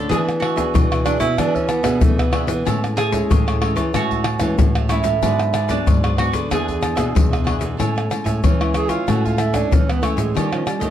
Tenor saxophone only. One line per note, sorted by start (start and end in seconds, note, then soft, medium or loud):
1.05 1.19 D4 loud
1.20 1.40 E4 loud
1.39 1.57 D4 loud
1.55 1.71 C#4 loud
1.69 2.04 B3 loud
2.03 2.21 A3 medium
2.20 2.83 B3 medium
8.45 8.63 C#4 medium
8.62 8.77 E4 medium
8.76 8.91 G#4 loud
8.90 9.11 F4 medium
9.09 9.27 F#4 medium
9.26 9.41 F4 medium
9.40 9.56 E4 medium
9.54 9.75 D4 medium
9.74 9.92 C#4 medium
9.90 10.05 B3 medium
10.03 10.20 A3 medium
10.19 10.38 G#3 medium
10.37 10.55 G3 medium
10.53 10.69 F3 medium
10.67 10.81 G3 medium
10.80 10.90 A3 medium